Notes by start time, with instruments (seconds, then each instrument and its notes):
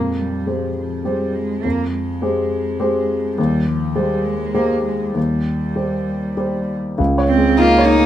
Already playing: grand piano F2, cello G#3
0.19 cello G3
0.46 cello F3, grand piano G#3 G4 C5
0.77 cello F3
1.05 cello G3, grand piano G#3 G4 C5
1.35 cello G#3
1.63 grand piano F2, cello A#3
1.92 cello G#3
2.22 grand piano G#3 G4 C5
2.80 grand piano G#3 G4 C5
3.37 grand piano D#2, cello G3
3.66 cello F3
3.96 cello G3, grand piano G#3 G4 C5
4.25 cello G#3
4.54 grand piano G#3 G4 C5, cello A#3
4.85 cello G#3
5.14 grand piano D#2, cello G3
5.76 grand piano G3 G4 C5
6.37 grand piano G3 G4 C5
6.98 grand piano C#2, sub bass C#2
7.18 grand piano C#5
7.29 cello C4
7.37 grand piano G#3
7.58 cello A#3, grand piano D#4, violin F4
7.79 grand piano C#5
7.88 violin D#4
7.98 grand piano G#3